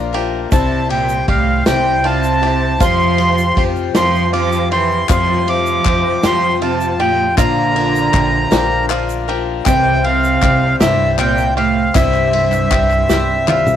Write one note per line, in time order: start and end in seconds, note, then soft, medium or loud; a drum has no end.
0.00 0.48 A#1 medium
0.00 0.48 A#2 medium
0.00 0.13 F3 medium
0.00 0.13 A#3 medium
0.00 0.54 A#3 medium
0.00 0.12 D4 medium
0.00 0.54 D4 medium
0.00 0.13 F4 medium
0.00 0.48 F4 medium
0.00 0.54 F4 medium
0.00 0.12 A#4 medium
0.00 0.50 A#4 medium
0.00 0.50 D5 medium
0.00 0.54 D5 medium
0.00 0.50 A#5 medium
0.13 0.52 F3 medium
0.13 0.52 A#3 medium
0.13 0.52 D4 medium
0.13 0.52 G4 medium
0.13 0.51 A#4 medium
0.13 ride medium
0.51 1.24 C2 loud
0.51 2.77 C2 medium
0.51 0.87 C3 medium
0.51 0.90 C3 medium
0.51 2.77 C3 medium
0.51 0.90 G3 medium
0.51 1.51 G3 medium
0.51 1.51 C4 medium
0.51 0.90 C4 medium
0.51 1.27 E4 loud
0.51 0.89 E4 medium
0.51 1.51 E4 medium
0.51 7.33 G4 medium
0.51 0.88 G4 medium
0.51 2.78 C5 medium
0.51 1.51 C5 medium
0.51 2.78 G5 medium
0.51 0.88 A5 loud
0.51 2.78 C6 loud
0.51 kick loud
0.51 ride medium
0.51 shaker loud
0.89 1.25 A#2 medium
0.89 1.27 C4 soft
0.89 1.28 E4 soft
0.89 1.28 G4 medium
0.89 1.26 G5 medium
0.89 ride medium
1.09 shaker medium
1.28 1.63 C2 medium
1.28 1.64 A2 medium
1.28 1.66 G3 medium
1.28 1.66 C4 medium
1.28 1.65 G4 medium
1.28 1.64 F5 medium
1.28 kick medium
1.28 ride medium
1.66 2.77 C2 medium
1.66 2.02 C3 medium
1.66 2.05 C3 medium
1.66 2.65 G3 medium
1.66 2.03 G3 medium
1.66 2.65 C4 medium
1.66 2.04 C4 medium
1.66 2.05 E4 medium
1.66 2.65 E4 medium
1.66 2.04 G4 medium
1.66 2.65 C5 medium
1.66 2.06 G5 loud
1.66 snare loud
1.66 ride medium
1.66 shaker medium
2.04 2.77 C3 medium
2.04 2.42 G3 medium
2.04 2.43 C4 medium
2.04 2.42 E4 medium
2.04 2.42 F4 medium
2.04 2.41 G4 medium
2.04 2.83 A5 loud
2.04 ride medium
2.24 shaker medium
2.42 2.80 C4 soft
2.42 2.81 E4 medium
2.42 2.80 G4 medium
2.42 ride medium
2.80 5.05 F1 medium
2.80 3.53 F2 loud
2.80 5.05 F2 medium
2.80 3.18 F3 medium
2.80 3.63 F3 medium
2.80 3.79 G3 medium
2.80 3.19 C4 medium
2.80 3.79 C4 medium
2.80 3.55 F4 medium
2.80 3.19 F4 medium
2.80 3.80 F4 medium
2.80 3.17 G4 medium
2.80 3.80 C5 medium
2.80 3.63 C6 loud
2.80 kick loud
2.80 ride medium
2.80 shaker loud
3.00 shaker soft
3.18 3.57 C4 soft
3.18 3.57 F4 soft
3.18 3.57 G4 medium
3.18 ride medium
3.18 shaker soft
3.38 shaker medium
3.57 3.92 F2 medium
3.57 3.95 F3 medium
3.57 3.94 C4 medium
3.57 3.94 F4 medium
3.57 3.94 G4 medium
3.57 3.93 G4 medium
3.57 kick medium
3.57 ride medium
3.76 shaker soft
3.95 5.05 F2 medium
3.95 4.31 F3 medium
3.95 4.32 F3 medium
3.95 4.93 G3 medium
3.95 4.94 C4 medium
3.95 4.33 C4 medium
3.95 4.33 F4 medium
3.95 4.94 F4 medium
3.95 4.33 G4 medium
3.95 4.32 G4 medium
3.95 4.94 C5 medium
3.95 4.31 C6 loud
3.95 snare loud
3.95 ride medium
3.95 shaker loud
4.15 shaker soft
4.33 4.71 F3 medium
4.33 4.69 F3 medium
4.33 4.71 C4 medium
4.33 4.70 F4 medium
4.33 4.72 F4 medium
4.33 4.70 G4 medium
4.33 4.69 D6 loud
4.33 ride medium
4.52 shaker medium
4.71 5.07 E3 medium
4.71 5.09 C4 soft
4.71 5.09 G4 medium
4.71 5.07 C6 medium
4.71 ride medium
4.91 shaker soft
5.09 7.34 F1 medium
5.09 5.81 F2 medium
5.09 7.34 F2 medium
5.09 5.47 F3 medium
5.09 5.45 F3 medium
5.09 6.07 G3 medium
5.09 6.08 C4 medium
5.09 5.47 C4 medium
5.09 5.84 F4 medium
5.09 6.08 F4 medium
5.09 5.47 F4 medium
5.09 5.46 G4 medium
5.09 6.08 C5 medium
5.09 5.49 C6 loud
5.09 kick loud
5.09 clap medium
5.09 ride medium
5.09 shaker loud
5.47 6.20 F3 medium
5.47 5.85 C4 soft
5.47 5.86 F4 soft
5.47 5.85 G4 soft
5.47 6.27 D6 loud
5.47 ride medium
5.66 shaker medium
5.85 6.20 F2 medium
5.85 6.23 F3 medium
5.85 6.24 C4 medium
5.85 6.24 F4 medium
5.85 6.23 G4 medium
5.85 kick medium
5.85 clap medium
5.85 ride medium
6.23 7.34 F2 medium
6.23 6.60 F3 medium
6.23 7.21 G3 medium
6.23 7.22 C4 medium
6.23 6.61 C4 medium
6.23 7.22 F4 medium
6.23 6.62 F4 medium
6.23 6.62 G4 medium
6.23 6.61 G4 medium
6.23 7.22 C5 medium
6.23 6.60 C6 loud
6.23 snare loud
6.23 ride medium
6.23 shaker loud
6.61 6.97 C3 medium
6.61 7.00 F3 medium
6.61 7.00 C4 medium
6.61 6.99 F4 medium
6.61 6.98 G4 medium
6.61 7.01 A5 medium
6.61 ride medium
6.81 shaker medium
6.99 7.35 A#2 medium
6.99 7.38 C4 soft
6.99 7.38 F4 medium
6.99 7.37 G4 medium
6.99 7.35 G5 medium
6.99 ride medium
7.37 8.10 A#1 loud
7.37 9.62 A#1 medium
7.37 9.62 A#2 medium
7.37 7.76 A#2 medium
7.37 8.86 D3 medium
7.37 7.76 D3 medium
7.37 7.76 F3 medium
7.37 8.36 A#3 medium
7.37 7.76 A#3 medium
7.37 8.36 D4 medium
7.37 7.75 D4 medium
7.37 8.12 F4 medium
7.37 8.37 F4 medium
7.37 9.64 F4 medium
7.37 9.64 A#4 medium
7.37 7.75 A#4 medium
7.37 9.64 D5 medium
7.37 8.37 D5 medium
7.37 8.86 A#5 loud
7.37 9.65 A#5 medium
7.37 kick loud
7.37 clap medium
7.37 ride medium
7.37 shaker medium
7.76 8.12 F3 soft
7.76 8.13 A#3 medium
7.76 8.14 D4 medium
7.76 8.14 A#4 medium
7.76 ride medium
7.96 shaker medium
8.13 8.49 A#1 medium
8.13 8.51 F3 medium
8.13 8.51 A#3 medium
8.13 8.50 D4 medium
8.13 8.51 G4 medium
8.13 8.50 A#4 medium
8.13 kick medium
8.13 clap medium
8.13 ride medium
8.51 9.62 A#1 medium
8.51 8.90 A#2 medium
8.51 8.90 D3 medium
8.51 8.89 F3 medium
8.51 9.50 A#3 medium
8.51 8.90 A#3 medium
8.51 8.90 D4 medium
8.51 9.50 D4 medium
8.51 9.51 F4 medium
8.51 8.89 G4 medium
8.51 8.89 A#4 medium
8.51 9.51 C5 medium
8.51 snare loud
8.51 ride medium
8.51 shaker loud
8.90 9.28 F3 medium
8.90 9.28 A#3 medium
8.90 9.28 D4 medium
8.90 9.28 F4 medium
8.90 9.27 A#4 medium
8.90 clap loud
8.90 ride medium
9.09 shaker medium
9.28 9.66 F3 soft
9.28 9.66 A#3 medium
9.28 9.66 D4 medium
9.28 9.65 G4 medium
9.28 9.66 A#4 medium
9.28 ride medium
9.65 10.38 C2 loud
9.65 11.91 C2 medium
9.65 10.02 C3 medium
9.65 10.04 C3 medium
9.65 11.91 C3 medium
9.65 10.65 E3 medium
9.65 10.64 G3 medium
9.65 10.04 G3 medium
9.65 10.65 C4 medium
9.65 10.04 C4 medium
9.65 10.05 E4 medium
9.65 10.41 G4 medium
9.65 13.76 G4 medium
9.65 13.76 C5 medium
9.65 10.03 C5 medium
9.65 10.65 C5 medium
9.65 10.05 G5 loud
9.65 13.76 G5 medium
9.65 13.76 C6 medium
9.65 kick loud
9.65 clap medium
9.65 ride medium
9.65 shaker loud
10.04 10.77 C3 medium
10.04 10.42 C4 soft
10.04 10.42 C5 medium
10.04 10.76 F5 loud
10.04 ride medium
10.24 shaker medium
10.42 10.77 C2 medium
10.42 10.80 G3 medium
10.42 10.80 C4 medium
10.42 10.79 G4 medium
10.42 10.79 C5 medium
10.42 kick medium
10.42 clap medium
10.42 ride medium
10.80 11.91 C2 medium
10.80 11.16 G2 medium
10.80 11.20 C3 medium
10.80 11.79 G3 medium
10.80 11.17 G3 medium
10.80 11.79 C4 medium
10.80 11.18 C4 medium
10.80 11.18 E4 medium
10.80 11.80 E4 medium
10.80 11.18 G4 medium
10.80 11.19 C5 medium
10.80 11.80 C5 medium
10.80 11.16 E5 loud
10.80 snare loud
10.80 ride medium
10.80 shaker loud
11.18 11.54 A#2 medium
11.18 11.57 G3 medium
11.18 11.57 C4 medium
11.18 11.57 E4 medium
11.18 11.56 F4 medium
11.18 11.56 C5 medium
11.18 11.54 G5 loud
11.18 clap medium
11.18 ride medium
11.38 shaker medium
11.57 11.92 A2 medium
11.57 11.94 C4 soft
11.57 11.94 G4 medium
11.57 11.95 C5 soft
11.57 11.96 F5 medium
11.57 ride medium
11.95 12.67 C2 loud
11.95 13.76 C2 medium
11.95 13.76 G2 medium
11.95 12.33 C3 medium
11.95 13.76 C3 medium
11.95 12.94 G3 medium
11.95 12.33 G3 medium
11.95 12.33 C4 medium
11.95 12.94 C4 medium
11.95 12.70 E4 medium
11.95 12.33 E4 medium
11.95 12.94 E4 medium
11.95 12.32 C5 medium
11.95 12.94 C5 medium
11.95 13.76 E5 medium
11.95 kick loud
11.95 clap medium
11.95 ride medium
11.95 shaker medium
12.14 clap soft
12.14 shaker soft
12.33 12.72 C4 soft
12.33 12.72 E4 soft
12.33 12.71 C5 medium
12.33 ride medium
12.52 clap soft
12.52 shaker medium
12.71 13.07 C2 medium
12.71 13.10 G3 medium
12.71 13.10 C4 medium
12.71 13.10 E4 medium
12.71 13.08 G4 medium
12.71 13.09 C5 medium
12.71 kick medium
12.71 clap loud
12.71 ride medium
12.90 clap soft
12.90 shaker soft
13.09 13.76 C2 medium
13.09 13.49 C3 medium
13.09 13.76 G3 medium
13.09 13.47 G3 medium
13.09 13.76 C4 medium
13.09 13.48 C4 medium
13.09 13.76 E4 medium
13.09 13.48 E4 medium
13.09 13.47 G4 medium
13.09 13.76 G4 medium
13.09 13.48 C5 medium
13.09 snare medium
13.09 shaker loud
13.48 13.76 G3 medium
13.48 13.76 C4 medium
13.48 13.76 E4 medium
13.48 13.76 F4 medium
13.48 13.76 C5 medium
13.48 clap medium
13.48 high tom medium
13.67 mid tom medium
13.67 shaker medium